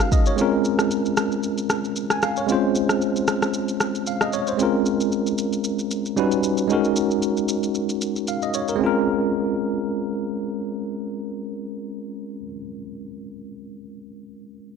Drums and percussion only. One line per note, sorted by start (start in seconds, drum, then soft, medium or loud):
0.00 cross-stick medium
0.00 shaker medium
0.12 kick medium
0.12 shaker medium
0.26 shaker medium
0.38 shaker medium
0.65 shaker medium
0.79 cross-stick medium
0.79 shaker medium
0.91 shaker medium
1.05 shaker soft
1.17 cross-stick medium
1.17 shaker medium
1.32 shaker soft
1.43 shaker medium
1.58 shaker medium
1.70 cross-stick medium
1.70 shaker medium
1.84 shaker soft
1.96 shaker medium
2.10 cross-stick medium
2.10 shaker medium
2.22 cross-stick medium
2.22 shaker medium
2.36 shaker medium
2.49 shaker medium
2.75 shaker medium
2.89 cross-stick medium
2.89 shaker medium
3.01 shaker medium
3.16 shaker soft
3.27 cross-stick medium
3.27 shaker medium
3.42 cross-stick medium
3.42 shaker soft
3.54 shaker medium
3.68 shaker medium
3.80 cross-stick medium
3.80 shaker medium
3.95 shaker soft
4.07 shaker medium
4.21 cross-stick medium
4.21 shaker medium
4.33 shaker medium
4.47 shaker medium
4.59 shaker medium
4.86 shaker medium
5.00 shaker medium
5.12 shaker medium
5.27 shaker soft
5.38 shaker medium
5.53 shaker soft
5.64 shaker medium
5.79 shaker medium
5.91 shaker medium
6.05 shaker soft
6.17 shaker medium
6.32 shaker medium
6.43 shaker medium
6.57 shaker medium
6.70 shaker medium
6.84 shaker soft
6.96 shaker medium
7.11 shaker medium
7.22 shaker medium
7.37 shaker soft
7.48 shaker medium
7.63 shaker soft
7.75 shaker medium
7.89 shaker medium
8.01 shaker medium
8.16 shaker soft
8.27 shaker medium
8.42 shaker medium
8.54 shaker medium
8.68 shaker medium